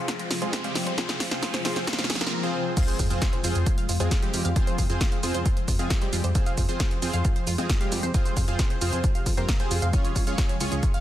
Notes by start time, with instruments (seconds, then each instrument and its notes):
Already playing: supersaw synth C4 F4 G#4 C5, riser
0.08 synth pluck F4, kick, snare, closed hi-hat
0.19 synth pluck C5, closed hi-hat
0.31 analog synth bass F2, synth pluck F4, snare, open hi-hat
0.42 analog synth bass F2, supersaw synth G#3 C4 F4 G#4, synth pluck C5, closed hi-hat
0.53 synth pluck F4, kick, snare, closed hi-hat
0.64 supersaw synth G3 G#3 C4 G4, synth pluck F5, closed hi-hat
0.75 analog synth bass F2, synth pluck F4, snare, open hi-hat
0.87 analog synth bass F2, synth pluck C5, closed hi-hat
0.98 supersaw synth C4 F4 G#4 C5, synth pluck F4, kick, snare, closed hi-hat
1.09 synth pluck C5, snare, closed hi-hat
1.20 analog synth bass F2, synth pluck F4, kick, snare, open hi-hat
1.31 analog synth bass F2, supersaw synth C4 F4 G#4 C5, synth pluck F5, snare, closed hi-hat
1.43 synth pluck F4, kick, snare, closed hi-hat
1.54 synth pluck C5, snare, closed hi-hat
1.65 analog synth bass F2, supersaw synth C4 F4 G#4 C5, synth pluck F4, snare, open hi-hat
1.76 analog synth bass F2, synth pluck C5, snare, closed hi-hat
1.87 synth pluck F4, kick, snare, closed hi-hat
1.93 snare
1.99 synth pluck F5, snare, closed hi-hat
2.04 snare
2.10 analog synth bass F2, synth pluck G#4, kick, snare, open hi-hat
2.15 snare
2.21 analog synth bass F2, supersaw synth A#3 C4 F4 A#4, synth pluck G#4, snare, closed hi-hat
2.27 snare
2.43 supersaw synth C4 F4 G#4 C5
2.77 supersaw synth C4 F4 G#4 C5, synth pluck F4, kick, closed hi-hat, crash, impact, shaker
2.88 synth pluck C5, closed hi-hat, shaker
2.99 analog synth bass F2, synth pluck F4, kick, open hi-hat, shaker
3.10 analog synth bass F2, supersaw synth C4 F4 G#4 C5, synth pluck F5, closed hi-hat, shaker
3.22 synth pluck F4, kick, snare, closed hi-hat, shaker
3.33 synth pluck C5, closed hi-hat
3.44 analog synth bass F2, supersaw synth C4 F4 G#4 C5, synth pluck F4, open hi-hat, shaker
3.55 analog synth bass F2, synth pluck C5, closed hi-hat, shaker
3.66 synth pluck F4, kick, closed hi-hat, shaker
3.78 synth pluck F5, closed hi-hat
3.89 analog synth bass F2, synth pluck F4, open hi-hat, shaker
4.00 analog synth bass F2, supersaw synth G#3 C4 F4 G#4, synth pluck C5, closed hi-hat, shaker
4.11 synth pluck F4, kick, snare, closed hi-hat, shaker
4.22 supersaw synth G3 G#3 C4 G4, synth pluck C5, closed hi-hat
4.34 analog synth bass F2, synth pluck F4, open hi-hat, shaker
4.45 analog synth bass F2, synth pluck F5, closed hi-hat, shaker
4.56 supersaw synth C4 F4 G#4 C5, synth pluck F4, kick, closed hi-hat, shaker
4.67 synth pluck C5, closed hi-hat, shaker
4.78 analog synth bass F2, synth pluck F4, kick, open hi-hat, shaker
4.90 analog synth bass F2, supersaw synth C4 F4 G#4 C5, synth pluck C5, closed hi-hat, shaker
5.01 synth pluck F4, kick, snare, closed hi-hat, shaker
5.12 synth pluck F5, closed hi-hat
5.23 analog synth bass F2, supersaw synth C4 F4 G#4 C5, synth pluck F4, open hi-hat, shaker
5.34 analog synth bass F2, synth pluck C5, closed hi-hat, shaker
5.46 synth pluck F4, kick, closed hi-hat, shaker
5.57 synth pluck C5, closed hi-hat
5.68 analog synth bass F2, synth pluck F4, kick, open hi-hat, shaker
5.79 analog synth bass F2, supersaw synth G#3 C4 F4 G#4, synth pluck F5, closed hi-hat, shaker
5.90 synth pluck F4, kick, snare, closed hi-hat, shaker
6.02 supersaw synth G3 G#3 C4 G4, synth pluck C5, closed hi-hat
6.13 analog synth bass F2, synth pluck F4, open hi-hat, shaker
6.24 analog synth bass F2, synth pluck C5, closed hi-hat, shaker
6.35 supersaw synth C4 F4 G#4 C5, synth pluck F4, kick, closed hi-hat, shaker
6.46 synth pluck F5, closed hi-hat, shaker
6.58 analog synth bass F2, synth pluck F4, kick, open hi-hat, shaker
6.69 analog synth bass F2, supersaw synth C4 F4 G#4 C5, synth pluck C5, closed hi-hat, shaker
6.80 synth pluck F4, kick, snare, closed hi-hat, shaker
6.91 synth pluck C5, closed hi-hat
7.02 analog synth bass F2, supersaw synth C4 F4 G#4 C5, synth pluck F4, open hi-hat, shaker
7.14 analog synth bass F2, synth pluck F5, closed hi-hat, shaker
7.25 synth pluck F4, kick, closed hi-hat, shaker
7.36 synth pluck C5, closed hi-hat
7.47 analog synth bass F2, synth pluck F4, open hi-hat, shaker
7.58 analog synth bass F2, supersaw synth G#3 C4 F4 G#4, synth pluck C5, closed hi-hat, shaker
7.69 synth pluck F4, kick, snare, closed hi-hat, shaker
7.81 supersaw synth G3 G#3 C4 G4, synth pluck F5, closed hi-hat
7.92 analog synth bass F2, synth pluck F4, open hi-hat, shaker
8.03 analog synth bass F2, synth pluck C5, closed hi-hat, shaker
8.14 supersaw synth C4 F4 G#4 C5, synth pluck F4, kick, closed hi-hat, shaker
8.25 synth pluck C5, closed hi-hat, shaker
8.37 analog synth bass F2, synth pluck F4, kick, open hi-hat, shaker
8.48 analog synth bass F2, supersaw synth C4 F4 G#4 C5, synth pluck F5, closed hi-hat, shaker
8.59 synth pluck F4, kick, snare, closed hi-hat, shaker
8.70 synth pluck C5, closed hi-hat
8.81 analog synth bass F2, supersaw synth C4 F4 G#4 C5, synth pluck F4, open hi-hat, shaker
8.93 analog synth bass F2, synth pluck C5, closed hi-hat, shaker
9.04 synth pluck F4, kick, closed hi-hat, shaker
9.15 synth pluck F5, closed hi-hat, shaker
9.26 analog synth bass F2, synth pluck F4, kick, open hi-hat, shaker
9.37 analog synth bass F2, supersaw synth A#3 C4 F4 A#4, synth pluck C5, closed hi-hat, shaker
9.49 synth pluck F4, kick, snare, closed hi-hat, shaker
9.60 supersaw synth C4 F4 G#4 C5, synth pluck C5, closed hi-hat
9.71 analog synth bass F2, synth pluck F4, open hi-hat, shaker
9.82 analog synth bass F2, synth pluck F5, closed hi-hat, shaker
9.93 supersaw synth C#4 F4 G#4 C#5, synth pluck F4, kick, closed hi-hat, shaker
10.05 synth pluck C#5, closed hi-hat, shaker
10.16 analog synth bass C#2, synth pluck F4, kick, open hi-hat, shaker
10.27 analog synth bass C#2, supersaw synth C#4 F4 G#4 C#5, synth pluck F5, closed hi-hat, shaker
10.38 synth pluck F4, kick, snare, closed hi-hat, shaker
10.49 synth pluck C#5, closed hi-hat
10.60 analog synth bass C#2, supersaw synth C#4 F4 G#4 C#5, synth pluck F4, open hi-hat, shaker
10.72 analog synth bass C#2, synth pluck C#5, closed hi-hat, shaker
10.83 synth pluck F4, kick, closed hi-hat, shaker
10.94 synth pluck F5, closed hi-hat